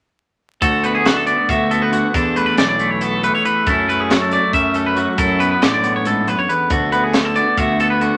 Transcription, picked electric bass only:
0.62 D2
1.49 D2
2.15 E2
2.58 B1
3.67 F#2
4.53 F#2
5.18 F#2
5.63 A1
6.70 D2
7.57 D2

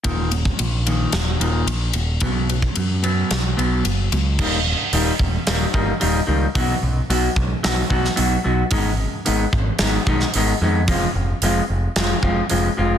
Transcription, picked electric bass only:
0.05 D#1
0.60 A#1
1.13 D#1
1.40 D#1
1.67 A#1
1.94 D#1
2.22 B1
2.77 F#2
3.31 B1
3.58 B1
3.85 F#1
4.12 C#2
4.93 D#1
5.19 D#1
5.48 D#1
5.74 G1
6.03 D#1
6.28 C#2
6.55 B1
6.83 B1
7.10 B1
7.36 B1
7.65 B1
7.90 B1
8.18 B1
8.46 B1
8.71 G#1
9.28 G#1
9.53 G#1
9.80 G#1
10.07 B1
10.35 G#1
10.61 F2
10.88 F1
11.15 F1
11.42 F1
11.70 F1
11.96 F1
12.23 F1
12.51 F1
12.79 F1

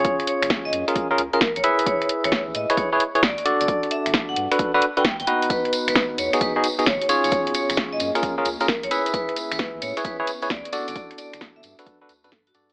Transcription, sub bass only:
0.42 F#1
0.65 F#1
0.73 F#2
1.18 C#2
1.56 A#1
2.24 A1
2.47 A1
2.55 A2
3.23 C#2
3.61 G1
4.06 G1
4.29 G1
4.37 G2
5.20 G1
5.88 E1
6.11 E1
6.18 E2
6.86 G#1
7.24 F#1
7.70 F#1
7.93 F#1
8.00 F#2
8.46 C#2
8.83 A#1
9.52 A1
9.74 A1
9.82 A2
10.50 C#2
10.88 G1
11.33 G1
11.56 G1
11.64 G2
12.09 D2
12.24 G2
12.55 G2

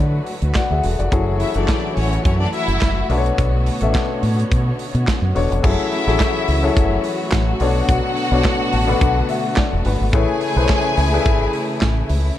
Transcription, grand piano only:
Already playing: D3 D4 E4 F#4 B4 C#5
0.00 D5
0.56 F#4 D5 F#5
0.71 G#4 E5
0.85 A4 F#5
0.99 F#4 D5
1.11 F#3 C#4 E4 G#4 A4
1.55 F#3 A3 E4 G#4 A4
3.10 B2 B3 D4 A4 B4
3.18 C#5
3.81 B2 B3 C#4 A4 E5
3.88 D4
5.35 B2 B3 D4 A4 C#5
5.63 F#3 C#4 E4 G#4 A4
6.07 F#3 C#4 E4 G#4 A4
6.63 F#3 C#4 E4 G#4 A4
7.61 B2 B3 D4 A4 C#5
8.31 B2 B3 D4 A4 C#5
8.73 A5
8.87 B2 B3 D4 A4 B4
9.01 F#5
9.29 E5
9.58 D5
9.86 B4
10.13 A3 E4 G#4 B4 C#5
10.56 A3 E4 G#4 B4 C5
10.64 C#5
11.12 A3 E4 G#4 B4 D5
11.21 E5

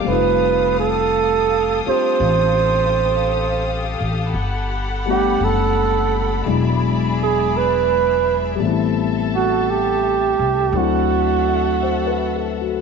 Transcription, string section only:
Already playing: F5
0.05 G4 A4 D#6
4.32 F#5 B5
6.46 G#4 D5 E5
8.58 A4 A5
10.72 A4 E5 F#5

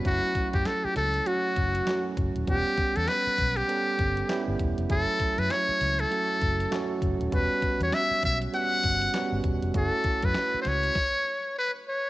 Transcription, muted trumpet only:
0.06 F#4
0.50 F#4 G4
0.66 A4
0.84 G4
0.96 A4
1.27 F#4
2.48 G4
2.96 A4
3.08 B4
3.57 G4
4.91 A4
5.39 B4
5.51 C#5
6.00 A4
7.33 B4
7.83 C#5
7.94 E5
8.25 E5
8.55 F#5
9.77 A4
10.25 B4
10.62 C5
10.67 C#5
11.58 B4
11.88 C#5

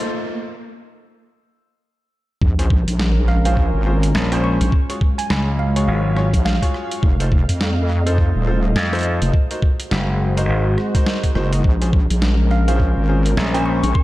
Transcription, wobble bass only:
2.42 A#1
2.87 A#1
3.74 G#1
4.61 A#1
6.33 A#1
7.03 F1
7.49 F2
8.35 D#1
9.22 F1
11.35 F#1
11.64 A#1
12.10 A#1
12.97 G#1
13.83 A#1

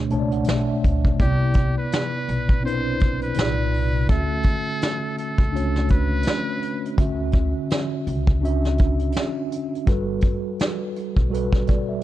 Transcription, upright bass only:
0.12 C#2
0.48 B1
0.85 D2
1.05 C#2
1.20 C2
2.29 B1
3.38 C2
4.10 D2
5.39 C#2
6.98 D2
8.07 C#2
9.87 G1
11.17 B1

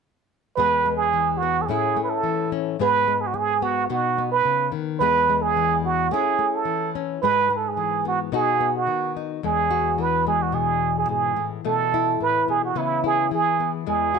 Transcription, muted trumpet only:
0.56 B4
0.97 G#4
1.37 F#4
1.62 G#4 A4
2.04 B4
2.09 A4
2.82 B4
3.21 G#4
3.27 F#4
3.35 G#4
3.63 F#4
3.90 F#4
4.31 B4
5.00 B4
5.42 G#4
5.85 F#4
6.12 G#4
6.54 A4
7.22 B4
7.57 A4
7.68 G#4
8.08 F#4
8.35 G#4
8.77 F#4
9.45 G#4
10.01 B4
10.28 G#4
10.42 F#4
10.55 G#4
10.98 G#4
11.11 G#4
11.66 A4
12.22 B4
12.50 G#4
12.65 F#4
12.78 E4
13.06 G#4
13.34 G#4
13.89 G#4

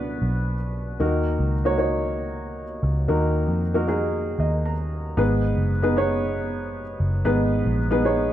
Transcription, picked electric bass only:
Already playing: C#2
0.22 B1
1.00 D#2
1.39 C#2
2.83 C#2
3.09 D#2
3.48 F2
4.39 D#2
5.17 G#1
5.57 F#1
7.00 F#1
7.26 G#1
7.66 A#1

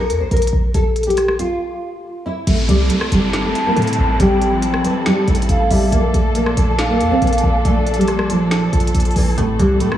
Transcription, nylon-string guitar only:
0.00 A#4
0.20 C5
0.31 A#4
0.74 A4
1.07 G4
1.39 F4
2.26 E4
2.47 A3
2.68 G3
2.90 A3
3.12 G3
3.44 A3
3.66 A#3
3.77 A3
4.20 G3
4.52 F3
4.84 E3
5.06 G3
5.28 A3
5.71 G3
5.92 A#3
6.14 A3
6.35 A#3
6.58 A3
6.90 A#3
7.11 C4
7.22 A#3
7.65 A3
7.98 G3
8.30 F3
9.16 E3
9.38 A3
9.59 G3
9.81 A3

